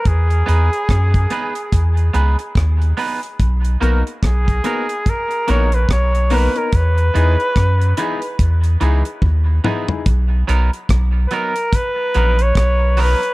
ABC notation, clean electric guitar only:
X:1
M:4/4
L:1/8
Q:"Swing 16ths" 1/4=72
K:B
V:1 name="Clean electric guitar"
z [B,DGB] z [B,DGB] z [B,DGB] z [B,DGB] | z [A,DFA] z [A,DFA] z [A,DFA] z [A,DFA] | z [E,B,DG] z [E,B,DG] z [E,B,DG] z [E,B,DG] | z [F,B,DA] z [F,B,DA] z [F,B,DA] z [F,B,DA] |]